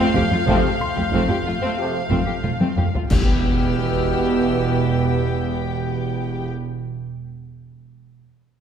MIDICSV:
0, 0, Header, 1, 13, 480
1, 0, Start_track
1, 0, Tempo, 650759
1, 356, Time_signature, 4, 2, 24, 8
1, 6346, End_track
2, 0, Start_track
2, 0, Title_t, "Music box"
2, 0, Program_c, 0, 10
2, 599, Note_on_c, 0, 84, 53
2, 601, Note_on_c, 0, 96, 86
2, 2021, Note_off_c, 0, 84, 0
2, 2022, Note_off_c, 0, 96, 0
2, 6346, End_track
3, 0, Start_track
3, 0, Title_t, "Violin section"
3, 0, Program_c, 1, 48
3, 0, Note_on_c, 1, 89, 61
3, 0, Note_on_c, 1, 91, 65
3, 0, Note_on_c, 1, 96, 62
3, 409, Note_off_c, 1, 96, 0
3, 409, Note_on_c, 1, 95, 62
3, 1049, Note_off_c, 1, 95, 0
3, 2021, Note_off_c, 1, 91, 0
3, 2022, Note_off_c, 1, 89, 0
3, 2290, Note_on_c, 1, 88, 52
3, 2290, Note_on_c, 1, 89, 49
3, 3462, Note_off_c, 1, 89, 0
3, 3941, Note_off_c, 1, 88, 0
3, 6346, End_track
4, 0, Start_track
4, 0, Title_t, "Violin section"
4, 0, Program_c, 2, 48
4, 0, Note_on_c, 2, 77, 92
4, 2146, Note_off_c, 2, 77, 0
4, 2289, Note_on_c, 2, 79, 67
4, 4757, Note_off_c, 2, 79, 0
4, 6346, End_track
5, 0, Start_track
5, 0, Title_t, "Violin section"
5, 0, Program_c, 3, 48
5, 0, Note_on_c, 3, 60, 93
5, 104, Note_off_c, 3, 60, 0
5, 115, Note_on_c, 3, 67, 70
5, 163, Note_off_c, 3, 67, 0
5, 238, Note_on_c, 3, 65, 72
5, 285, Note_off_c, 3, 65, 0
5, 361, Note_on_c, 3, 60, 91
5, 469, Note_off_c, 3, 60, 0
5, 712, Note_on_c, 3, 67, 58
5, 760, Note_off_c, 3, 67, 0
5, 833, Note_on_c, 3, 60, 76
5, 945, Note_off_c, 3, 60, 0
5, 950, Note_on_c, 3, 67, 62
5, 999, Note_off_c, 3, 67, 0
5, 1078, Note_on_c, 3, 65, 67
5, 1126, Note_off_c, 3, 65, 0
5, 1192, Note_on_c, 3, 60, 84
5, 1305, Note_off_c, 3, 60, 0
5, 1548, Note_on_c, 3, 60, 73
5, 1665, Note_off_c, 3, 60, 0
5, 1665, Note_on_c, 3, 67, 52
5, 1717, Note_off_c, 3, 67, 0
5, 1790, Note_on_c, 3, 65, 53
5, 1841, Note_off_c, 3, 65, 0
5, 1918, Note_on_c, 3, 60, 59
5, 2036, Note_off_c, 3, 60, 0
5, 2045, Note_on_c, 3, 67, 43
5, 2095, Note_off_c, 3, 67, 0
5, 2172, Note_on_c, 3, 65, 48
5, 2220, Note_off_c, 3, 65, 0
5, 2290, Note_on_c, 3, 67, 64
5, 4759, Note_off_c, 3, 67, 0
5, 6346, End_track
6, 0, Start_track
6, 0, Title_t, "French horn section"
6, 0, Program_c, 4, 60
6, 365, Note_on_c, 4, 57, 81
6, 368, Note_on_c, 4, 67, 79
6, 528, Note_off_c, 4, 57, 0
6, 530, Note_off_c, 4, 67, 0
6, 1320, Note_on_c, 4, 67, 70
6, 1325, Note_on_c, 4, 57, 69
6, 1487, Note_off_c, 4, 67, 0
6, 1490, Note_off_c, 4, 57, 0
6, 2294, Note_on_c, 4, 59, 74
6, 2296, Note_on_c, 4, 67, 63
6, 4763, Note_off_c, 4, 59, 0
6, 4765, Note_off_c, 4, 67, 0
6, 6346, End_track
7, 0, Start_track
7, 0, Title_t, "Viola section"
7, 0, Program_c, 5, 48
7, 0, Note_on_c, 5, 57, 87
7, 107, Note_off_c, 5, 57, 0
7, 118, Note_on_c, 5, 57, 78
7, 166, Note_off_c, 5, 57, 0
7, 241, Note_on_c, 5, 57, 66
7, 288, Note_off_c, 5, 57, 0
7, 354, Note_on_c, 5, 57, 96
7, 465, Note_off_c, 5, 57, 0
7, 713, Note_on_c, 5, 57, 68
7, 761, Note_off_c, 5, 57, 0
7, 830, Note_on_c, 5, 57, 86
7, 941, Note_off_c, 5, 57, 0
7, 950, Note_on_c, 5, 57, 57
7, 999, Note_off_c, 5, 57, 0
7, 1085, Note_on_c, 5, 57, 60
7, 1131, Note_off_c, 5, 57, 0
7, 1200, Note_on_c, 5, 57, 80
7, 1310, Note_off_c, 5, 57, 0
7, 1561, Note_on_c, 5, 57, 60
7, 1669, Note_off_c, 5, 57, 0
7, 1677, Note_on_c, 5, 57, 53
7, 1727, Note_off_c, 5, 57, 0
7, 1798, Note_on_c, 5, 57, 53
7, 1848, Note_off_c, 5, 57, 0
7, 1916, Note_on_c, 5, 57, 60
7, 2035, Note_off_c, 5, 57, 0
7, 2046, Note_on_c, 5, 57, 49
7, 2096, Note_off_c, 5, 57, 0
7, 2170, Note_on_c, 5, 57, 40
7, 2218, Note_off_c, 5, 57, 0
7, 2294, Note_on_c, 5, 59, 68
7, 4763, Note_off_c, 5, 59, 0
7, 6346, End_track
8, 0, Start_track
8, 0, Title_t, "Trombone section"
8, 0, Program_c, 6, 61
8, 338, Note_on_c, 6, 48, 79
8, 340, Note_on_c, 6, 53, 89
8, 510, Note_off_c, 6, 48, 0
8, 512, Note_off_c, 6, 53, 0
8, 1317, Note_on_c, 6, 53, 67
8, 1318, Note_on_c, 6, 48, 67
8, 1485, Note_off_c, 6, 53, 0
8, 1486, Note_off_c, 6, 48, 0
8, 2294, Note_on_c, 6, 47, 77
8, 2300, Note_on_c, 6, 52, 73
8, 4763, Note_off_c, 6, 47, 0
8, 4769, Note_off_c, 6, 52, 0
8, 6346, End_track
9, 0, Start_track
9, 0, Title_t, "Cello section"
9, 0, Program_c, 7, 48
9, 105, Note_on_c, 7, 41, 80
9, 155, Note_off_c, 7, 41, 0
9, 224, Note_on_c, 7, 41, 68
9, 274, Note_off_c, 7, 41, 0
9, 347, Note_on_c, 7, 41, 90
9, 397, Note_off_c, 7, 41, 0
9, 704, Note_on_c, 7, 41, 65
9, 754, Note_off_c, 7, 41, 0
9, 818, Note_on_c, 7, 41, 93
9, 869, Note_off_c, 7, 41, 0
9, 937, Note_on_c, 7, 41, 63
9, 989, Note_off_c, 7, 41, 0
9, 1055, Note_on_c, 7, 41, 61
9, 1107, Note_off_c, 7, 41, 0
9, 1176, Note_on_c, 7, 41, 79
9, 1228, Note_off_c, 7, 41, 0
9, 1542, Note_on_c, 7, 41, 75
9, 1593, Note_off_c, 7, 41, 0
9, 1664, Note_on_c, 7, 41, 49
9, 1716, Note_off_c, 7, 41, 0
9, 1794, Note_on_c, 7, 41, 52
9, 1845, Note_off_c, 7, 41, 0
9, 1914, Note_on_c, 7, 41, 68
9, 1966, Note_off_c, 7, 41, 0
9, 2041, Note_on_c, 7, 41, 46
9, 2091, Note_off_c, 7, 41, 0
9, 2160, Note_on_c, 7, 41, 38
9, 2210, Note_off_c, 7, 41, 0
9, 2283, Note_on_c, 7, 40, 67
9, 4752, Note_off_c, 7, 40, 0
9, 6346, End_track
10, 0, Start_track
10, 0, Title_t, "Double bass section"
10, 0, Program_c, 8, 48
10, 109, Note_on_c, 8, 29, 75
10, 158, Note_off_c, 8, 29, 0
10, 351, Note_on_c, 8, 29, 96
10, 399, Note_off_c, 8, 29, 0
10, 828, Note_on_c, 8, 29, 86
10, 877, Note_off_c, 8, 29, 0
10, 1066, Note_on_c, 8, 29, 68
10, 1116, Note_off_c, 8, 29, 0
10, 1557, Note_on_c, 8, 29, 79
10, 1606, Note_off_c, 8, 29, 0
10, 1795, Note_on_c, 8, 29, 54
10, 1846, Note_off_c, 8, 29, 0
10, 2044, Note_on_c, 8, 29, 45
10, 2094, Note_off_c, 8, 29, 0
10, 2287, Note_on_c, 8, 28, 76
10, 4756, Note_off_c, 8, 28, 0
10, 6346, End_track
11, 0, Start_track
11, 0, Title_t, "Impact"
11, 0, Program_c, 10, 103
11, 2293, Note_on_c, 10, 60, 88
11, 4791, Note_off_c, 10, 60, 0
11, 6346, End_track
12, 0, Start_track
12, 0, Title_t, "Taiko and cinematic ensemble drums"
12, 115, Note_on_c, 9, 43, 70
12, 188, Note_off_c, 9, 43, 0
12, 353, Note_on_c, 9, 41, 99
12, 427, Note_off_c, 9, 41, 0
12, 591, Note_on_c, 9, 43, 57
12, 665, Note_off_c, 9, 43, 0
12, 713, Note_on_c, 9, 43, 57
12, 787, Note_off_c, 9, 43, 0
12, 832, Note_on_c, 9, 41, 82
12, 905, Note_off_c, 9, 41, 0
12, 1557, Note_on_c, 9, 41, 81
12, 1631, Note_off_c, 9, 41, 0
12, 1803, Note_on_c, 9, 47, 89
12, 1876, Note_off_c, 9, 47, 0
12, 1922, Note_on_c, 9, 48, 86
12, 1996, Note_off_c, 9, 48, 0
12, 2051, Note_on_c, 9, 45, 100
12, 2125, Note_off_c, 9, 45, 0
12, 2176, Note_on_c, 9, 43, 82
12, 2250, Note_off_c, 9, 43, 0
12, 2301, Note_on_c, 9, 41, 99
12, 2374, Note_off_c, 9, 41, 0
12, 6346, End_track
13, 0, Start_track
13, 0, Title_t, "Drums"
13, 2288, Note_on_c, 9, 35, 80
13, 2288, Note_on_c, 9, 49, 74
13, 2362, Note_off_c, 9, 35, 0
13, 2362, Note_off_c, 9, 49, 0
13, 6346, End_track
0, 0, End_of_file